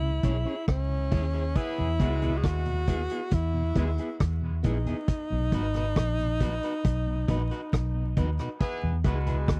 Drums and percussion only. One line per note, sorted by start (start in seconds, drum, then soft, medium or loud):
0.23 kick medium
0.23 closed hi-hat medium
0.68 kick loud
0.68 cross-stick loud
1.11 kick medium
1.11 open hi-hat medium
1.56 kick loud
1.56 closed hi-hat medium
2.00 kick medium
2.00 closed hi-hat medium
2.22 closed hi-hat medium
2.44 kick loud
2.44 cross-stick loud
2.44 closed hi-hat medium
2.66 closed hi-hat soft
2.88 kick medium
2.88 closed hi-hat medium
3.10 closed hi-hat medium
3.31 kick loud
3.31 closed hi-hat medium
3.75 kick medium
3.75 closed hi-hat medium
3.98 closed hi-hat soft
4.20 kick loud
4.20 cross-stick loud
4.20 closed hi-hat medium
4.64 kick medium
4.64 closed hi-hat medium
4.87 closed hi-hat soft
5.08 kick loud
5.08 closed hi-hat medium
5.52 kick medium
5.52 closed hi-hat medium
5.74 cross-stick medium
5.74 closed hi-hat medium
5.96 kick loud
5.96 cross-stick loud
5.96 closed hi-hat medium
6.19 closed hi-hat soft
6.40 kick medium
6.40 closed hi-hat medium
6.63 closed hi-hat soft
6.85 kick loud
6.85 closed hi-hat medium
7.28 kick medium
7.28 closed hi-hat medium
7.51 closed hi-hat soft
7.73 kick loud
7.73 cross-stick loud
7.73 closed hi-hat medium
8.17 kick medium
8.17 closed hi-hat medium
8.39 cross-stick medium
8.39 closed hi-hat soft
8.61 kick loud
8.61 closed hi-hat medium
9.04 kick medium
9.04 closed hi-hat medium
9.27 closed hi-hat medium
9.48 kick loud
9.48 cross-stick loud
9.48 closed hi-hat medium